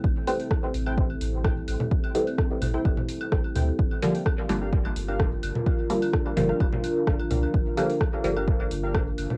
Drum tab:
HH |--oo--o---o---o-|--oo--o---o---o-|--oo--o---o---o-|--oo--o---o---o-|
CL |--x-x--x-x--x-x-|-x-x--x-x--x-x--|-x--x-x--x-x--x-|x--x-x--x-x--x-x|
SD |----r-------r---|----r--r----r---|----r-------r---|----r--r----r---|
CG |------------O--O|------O--O----O-|------------O--O|------O--O----O-|
BD |o---o---o---o---|o---o---o---o---|o---o---o---o---|o---o---o---o---|

HH |--oo--o---o---o-|
CL |--x-x--x-x--x-x-|
SD |----r-------r---|
CG |------------O--O|
BD |o---o---o---o---|